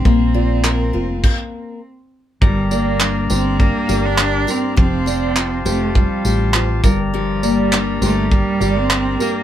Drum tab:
CC |----x---|--------|--------|--------|
TB |--------|-x-x-x-x|-x-x-x-x|-x-x-x-x|
CP |--x-----|--x---x-|--x---x-|--x---x-|
BD |o---o---|o---o---|o---o--o|----o---|